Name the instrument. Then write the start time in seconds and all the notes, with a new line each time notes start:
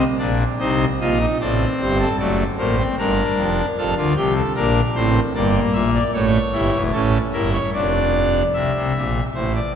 pipe organ
0.18 A#1 A#2 D4 D5
0.59 C2 C3 D#4 C5
1.00 A#1 A#2 F4 D#5
1.20 D#4
1.40 A1 A2 C4 D5
1.81 G1 G2 C5
1.99 A4
2.19 F#1 F#2 A3 D5
2.58 A1 A2 A#3 C5
2.78 C4
2.98 G1 G2 D4 A#4
3.36 F1 F2
3.77 F1 F2 F4 A4
3.97 D2 D3 F4
4.16 C2 C3 G4
4.36 A4
4.56 A#1 A#2 D4 A#4
4.95 A1 A2 C4 C5
5.35 G1 G2 A#3 D5
5.73 A#1 A#2 E5
5.94 D5
6.13 A1 A2 A3 C#5
6.53 G1 G2 E4
6.73 E1 E2
6.93 A1 A2 C#4 A4
7.32 G1 G2 E4 A#4
7.53 C#5
7.74 F1 F2 D4 D5
8.54 C2 C3 E5
8.75 C2 C3
8.96 A#1 A#2
9.35 A1 A2 C5
9.55 D5